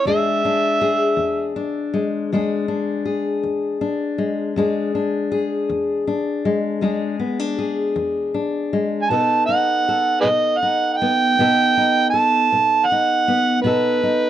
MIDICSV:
0, 0, Header, 1, 3, 480
1, 0, Start_track
1, 0, Tempo, 755668
1, 27, Time_signature, 12, 3, 24, 8
1, 9083, End_track
2, 0, Start_track
2, 0, Title_t, "Harmonica"
2, 0, Program_c, 0, 22
2, 46, Note_on_c, 0, 76, 86
2, 971, Note_off_c, 0, 76, 0
2, 5732, Note_on_c, 0, 80, 77
2, 5780, Note_on_c, 0, 81, 99
2, 5790, Note_off_c, 0, 80, 0
2, 6007, Note_off_c, 0, 81, 0
2, 6011, Note_on_c, 0, 78, 100
2, 6473, Note_off_c, 0, 78, 0
2, 6485, Note_on_c, 0, 68, 71
2, 6485, Note_on_c, 0, 71, 71
2, 6485, Note_on_c, 0, 75, 101
2, 6526, Note_off_c, 0, 68, 0
2, 6529, Note_off_c, 0, 71, 0
2, 6721, Note_on_c, 0, 78, 92
2, 6731, Note_off_c, 0, 75, 0
2, 6944, Note_off_c, 0, 78, 0
2, 6944, Note_on_c, 0, 78, 73
2, 6968, Note_on_c, 0, 79, 107
2, 6977, Note_off_c, 0, 78, 0
2, 7683, Note_off_c, 0, 79, 0
2, 7687, Note_on_c, 0, 81, 113
2, 8169, Note_on_c, 0, 78, 109
2, 8178, Note_off_c, 0, 81, 0
2, 8649, Note_off_c, 0, 78, 0
2, 8652, Note_on_c, 0, 71, 84
2, 9083, Note_off_c, 0, 71, 0
2, 9083, End_track
3, 0, Start_track
3, 0, Title_t, "Steel-string acoustic guitar"
3, 0, Program_c, 1, 25
3, 34, Note_on_c, 1, 40, 78
3, 44, Note_on_c, 1, 56, 59
3, 45, Note_on_c, 1, 62, 60
3, 49, Note_on_c, 1, 68, 74
3, 283, Note_off_c, 1, 62, 0
3, 286, Note_on_c, 1, 62, 64
3, 462, Note_off_c, 1, 40, 0
3, 514, Note_off_c, 1, 68, 0
3, 517, Note_on_c, 1, 68, 75
3, 741, Note_on_c, 1, 40, 70
3, 988, Note_off_c, 1, 62, 0
3, 991, Note_on_c, 1, 62, 67
3, 1176, Note_off_c, 1, 40, 0
3, 1227, Note_off_c, 1, 56, 0
3, 1229, Note_on_c, 1, 56, 66
3, 1477, Note_on_c, 1, 40, 75
3, 1478, Note_off_c, 1, 56, 0
3, 1481, Note_on_c, 1, 56, 63
3, 1482, Note_off_c, 1, 62, 0
3, 1485, Note_on_c, 1, 62, 66
3, 1488, Note_off_c, 1, 68, 0
3, 1491, Note_on_c, 1, 68, 71
3, 1696, Note_off_c, 1, 62, 0
3, 1704, Note_on_c, 1, 62, 64
3, 1903, Note_off_c, 1, 40, 0
3, 1933, Note_off_c, 1, 68, 0
3, 1940, Note_on_c, 1, 68, 62
3, 2181, Note_on_c, 1, 40, 63
3, 2413, Note_off_c, 1, 62, 0
3, 2421, Note_on_c, 1, 62, 59
3, 2615, Note_off_c, 1, 40, 0
3, 2649, Note_off_c, 1, 56, 0
3, 2657, Note_on_c, 1, 56, 64
3, 2874, Note_off_c, 1, 62, 0
3, 2874, Note_off_c, 1, 68, 0
3, 2898, Note_off_c, 1, 56, 0
3, 2898, Note_on_c, 1, 40, 73
3, 2905, Note_on_c, 1, 56, 60
3, 2905, Note_on_c, 1, 62, 65
3, 2913, Note_on_c, 1, 68, 66
3, 3136, Note_off_c, 1, 62, 0
3, 3143, Note_on_c, 1, 62, 61
3, 3334, Note_off_c, 1, 40, 0
3, 3369, Note_off_c, 1, 68, 0
3, 3377, Note_on_c, 1, 68, 69
3, 3617, Note_on_c, 1, 40, 71
3, 3851, Note_off_c, 1, 62, 0
3, 3858, Note_on_c, 1, 62, 62
3, 4053, Note_off_c, 1, 40, 0
3, 4091, Note_off_c, 1, 56, 0
3, 4099, Note_on_c, 1, 56, 64
3, 4326, Note_off_c, 1, 56, 0
3, 4328, Note_off_c, 1, 62, 0
3, 4328, Note_on_c, 1, 40, 70
3, 4333, Note_on_c, 1, 56, 65
3, 4335, Note_off_c, 1, 68, 0
3, 4336, Note_on_c, 1, 62, 58
3, 4343, Note_on_c, 1, 68, 67
3, 4567, Note_off_c, 1, 62, 0
3, 4570, Note_on_c, 1, 59, 60
3, 4697, Note_off_c, 1, 59, 0
3, 4697, Note_on_c, 1, 62, 48
3, 4769, Note_off_c, 1, 40, 0
3, 4810, Note_off_c, 1, 68, 0
3, 4818, Note_on_c, 1, 68, 62
3, 5054, Note_on_c, 1, 40, 72
3, 5292, Note_off_c, 1, 62, 0
3, 5300, Note_on_c, 1, 62, 57
3, 5492, Note_off_c, 1, 40, 0
3, 5537, Note_off_c, 1, 56, 0
3, 5545, Note_on_c, 1, 56, 59
3, 5753, Note_off_c, 1, 68, 0
3, 5754, Note_off_c, 1, 62, 0
3, 5782, Note_on_c, 1, 47, 70
3, 5783, Note_off_c, 1, 56, 0
3, 5785, Note_on_c, 1, 59, 59
3, 5787, Note_on_c, 1, 63, 59
3, 5797, Note_on_c, 1, 69, 70
3, 6024, Note_off_c, 1, 63, 0
3, 6026, Note_on_c, 1, 63, 60
3, 6216, Note_off_c, 1, 47, 0
3, 6276, Note_off_c, 1, 69, 0
3, 6279, Note_on_c, 1, 69, 66
3, 6504, Note_on_c, 1, 47, 65
3, 6747, Note_off_c, 1, 63, 0
3, 6750, Note_on_c, 1, 63, 62
3, 6937, Note_off_c, 1, 47, 0
3, 6995, Note_off_c, 1, 59, 0
3, 6998, Note_on_c, 1, 59, 63
3, 7234, Note_on_c, 1, 47, 75
3, 7236, Note_off_c, 1, 59, 0
3, 7238, Note_on_c, 1, 59, 67
3, 7241, Note_off_c, 1, 63, 0
3, 7244, Note_off_c, 1, 69, 0
3, 7244, Note_on_c, 1, 63, 63
3, 7247, Note_on_c, 1, 69, 70
3, 7472, Note_off_c, 1, 63, 0
3, 7479, Note_on_c, 1, 63, 61
3, 7662, Note_off_c, 1, 47, 0
3, 7706, Note_off_c, 1, 69, 0
3, 7709, Note_on_c, 1, 69, 59
3, 7955, Note_on_c, 1, 47, 68
3, 8193, Note_off_c, 1, 63, 0
3, 8205, Note_on_c, 1, 63, 60
3, 8383, Note_off_c, 1, 47, 0
3, 8427, Note_off_c, 1, 59, 0
3, 8435, Note_on_c, 1, 59, 59
3, 8642, Note_off_c, 1, 59, 0
3, 8647, Note_off_c, 1, 63, 0
3, 8663, Note_on_c, 1, 47, 70
3, 8665, Note_on_c, 1, 59, 61
3, 8676, Note_on_c, 1, 63, 59
3, 8678, Note_off_c, 1, 69, 0
3, 8681, Note_on_c, 1, 69, 70
3, 8907, Note_off_c, 1, 63, 0
3, 8914, Note_on_c, 1, 63, 64
3, 9083, Note_off_c, 1, 47, 0
3, 9083, Note_off_c, 1, 59, 0
3, 9083, Note_off_c, 1, 63, 0
3, 9083, Note_off_c, 1, 69, 0
3, 9083, End_track
0, 0, End_of_file